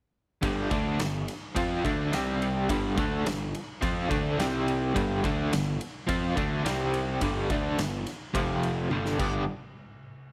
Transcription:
0.42 0.69 G1 medium
0.42 0.70 G2 medium
0.42 0.69 D3 medium
0.42 0.71 G3 loud
0.42 kick loud
0.42 ride medium
0.70 0.98 D2 medium
0.70 0.98 D3 medium
0.70 0.99 A3 medium
0.70 0.99 D4 medium
0.70 kick loud
0.70 ride medium
0.99 1.27 G1 medium
0.99 1.23 G2 medium
0.99 1.23 D3 medium
0.99 snare loud
0.99 ride medium
1.28 snare soft
1.28 ride medium
1.56 1.83 F2 medium
1.56 1.84 F3 medium
1.56 1.84 C4 loud
1.56 1.84 F4 loud
1.56 kick loud
1.56 ride loud
1.84 2.12 D2 medium
1.84 2.12 D3 medium
1.84 2.12 A3 medium
1.84 2.13 D4 medium
1.84 kick medium
1.84 ride medium
2.13 2.67 C2 medium
2.13 2.69 C3 medium
2.13 2.69 G3 medium
2.13 2.70 C4 loud
2.13 snare loud
2.13 ride medium
2.42 ride medium
2.69 2.96 G1 medium
2.69 2.97 G2 loud
2.69 2.96 D3 medium
2.69 2.98 G3 loud
2.69 kick loud
2.69 ride loud
2.97 3.24 D2 medium
2.97 3.25 D3 medium
2.97 3.26 A3 medium
2.97 3.26 D4 loud
2.97 kick loud
2.97 ride medium
3.25 3.53 G1 medium
3.25 3.48 G2 medium
3.25 3.49 D3 medium
3.25 snare loud
3.25 ride medium
3.55 ride medium
3.81 4.09 F2 medium
3.81 4.08 F3 medium
3.81 4.09 C4 medium
3.81 4.10 F4 loud
3.81 kick loud
3.81 ride medium
4.08 4.37 D2 medium
4.08 4.37 D3 medium
4.08 4.38 A3 medium
4.08 4.38 D4 medium
4.08 kick loud
4.08 ride medium
4.38 4.91 C2 loud
4.38 4.94 C3 medium
4.38 4.94 G3 medium
4.38 4.95 C4 medium
4.38 snare loud
4.38 ride medium
4.68 ride medium
4.94 5.22 G1 medium
4.94 5.22 G2 loud
4.94 5.22 D3 medium
4.94 5.23 G3 loud
4.94 kick loud
4.94 ride medium
5.24 5.51 D2 medium
5.24 5.51 D3 medium
5.24 5.52 A3 medium
5.24 5.52 D4 loud
5.24 kick loud
5.24 ride medium
5.52 5.79 G1 medium
5.52 5.75 G2 medium
5.52 5.75 D3 medium
5.52 snare loud
5.52 ride loud
5.81 ride medium
6.07 6.35 F2 medium
6.07 6.35 F3 medium
6.07 6.36 C4 loud
6.07 6.36 F4 loud
6.07 kick loud
6.07 ride medium
6.36 6.63 D2 medium
6.36 6.64 D3 medium
6.36 6.64 A3 medium
6.36 6.64 D4 medium
6.36 kick loud
6.36 ride medium
6.64 7.17 C2 medium
6.64 7.20 C3 medium
6.64 7.21 G3 medium
6.64 7.21 C4 loud
6.64 snare loud
6.64 ride loud
6.94 ride medium
7.21 7.48 G1 medium
7.21 7.49 G2 medium
7.21 7.49 D3 loud
7.21 7.50 G3 loud
7.21 kick loud
7.21 ride loud
7.50 7.77 D2 medium
7.50 7.78 D3 medium
7.50 7.78 A3 medium
7.50 7.78 D4 medium
7.50 kick loud
7.50 ride medium
7.77 8.04 G1 medium
7.77 8.01 G2 medium
7.77 8.01 D3 medium
7.77 snare loud
7.77 ride medium
8.07 snare soft
8.07 ride medium
8.34 8.88 F1 loud
8.34 8.90 F2 medium
8.34 8.90 C3 loud
8.34 8.91 F3 loud
8.34 kick loud
8.34 ride medium
8.63 ride medium
8.91 9.18 G1 medium
8.91 9.18 G2 medium
8.91 9.18 D3 medium
8.91 9.19 G3 loud
8.91 high tom medium
9.06 snare medium
9.19 9.46 G1 medium
9.19 9.42 G2 loud
9.19 9.42 D3 medium
9.19 9.43 G3 medium
9.19 9.43 B3 medium
9.19 9.43 D4 loud
9.19 kick loud
9.19 crash medium

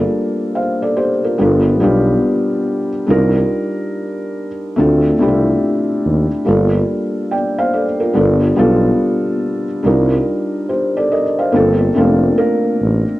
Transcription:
0.00 1.07 G3 medium
0.00 1.08 A#3 medium
0.00 1.08 D4 medium
0.00 0.56 F4 medium
0.00 0.59 A4 medium
0.55 0.81 C5 medium
0.55 0.81 F5 medium
0.82 0.97 A4 medium
0.82 0.97 D5 medium
0.97 1.23 G4 medium
0.97 1.23 C5 medium
1.24 1.39 F4 soft
1.24 1.65 A#4 medium
1.38 1.84 G1 medium
1.38 1.75 G3 medium
1.38 1.76 B3 medium
1.38 1.76 D4 medium
1.38 1.76 F4 medium
1.38 1.77 A4 medium
1.80 2.17 B1 medium
1.80 2.87 G3 medium
1.80 2.88 B3 medium
1.80 2.88 D4 medium
1.80 2.89 F4 medium
1.80 2.89 G4 loud
3.07 3.44 C2 loud
3.07 4.45 G3 medium
3.07 4.46 D4 medium
3.07 4.46 D#4 medium
3.07 4.47 F4 medium
3.07 4.47 A#4 loud
4.76 5.13 D2 loud
4.76 5.13 A3 medium
4.76 5.14 C4 medium
4.76 5.14 D4 medium
4.76 5.15 F4 medium
4.76 5.15 A4 medium
5.19 5.55 C2 medium
5.19 6.26 A3 medium
5.19 6.26 C4 medium
5.19 6.27 D4 medium
5.19 5.29 E4 medium
5.19 6.28 G4 loud
5.28 6.30 F4 medium
6.05 6.27 D#2 medium
6.45 6.82 G1 loud
6.45 7.83 G3 medium
6.45 7.84 A#3 medium
6.45 7.84 D4 medium
6.45 7.32 F4 medium
6.45 7.32 A4 medium
7.31 7.58 D5 medium
7.31 7.57 G5 medium
7.59 7.74 C5 medium
7.59 7.73 F5 medium
7.74 8.00 A4 medium
7.74 7.99 D5 medium
8.00 8.15 F4 medium
8.00 8.40 A#4 medium
8.13 8.51 G1 loud
8.13 8.51 G3 medium
8.13 8.51 B3 medium
8.13 8.52 D4 medium
8.13 8.52 F4 medium
8.13 8.53 A4 medium
8.56 8.93 B1 medium
8.56 9.63 G3 medium
8.56 9.64 B3 medium
8.56 9.64 D4 medium
8.56 9.64 F4 medium
8.56 9.65 A4 loud
9.83 10.20 C2 loud
9.83 11.22 G3 medium
9.83 11.22 D4 medium
9.83 11.22 D#4 medium
9.83 11.23 F4 medium
9.83 10.70 A#4 medium
10.69 10.95 G4 medium
10.69 10.95 C5 medium
10.97 11.11 A4 medium
10.97 11.11 D5 medium
11.12 11.38 A#4 medium
11.12 11.37 D#5 medium
11.39 11.79 C5 medium
11.39 11.79 F5 medium
11.52 11.89 G1 medium
11.52 11.89 A#3 medium
11.52 11.90 C4 medium
11.52 11.90 D4 medium
11.52 11.91 F4 medium
11.52 11.91 A4 loud
11.94 12.31 F1 medium
11.94 12.03 A3 medium
11.94 13.02 C4 medium
11.94 13.02 D4 medium
11.94 13.03 F4 medium
11.94 13.03 A4 loud
12.01 12.38 A#3 medium
12.38 13.19 A#3 medium
12.38 13.20 A#4 loud
12.81 13.03 A1 medium

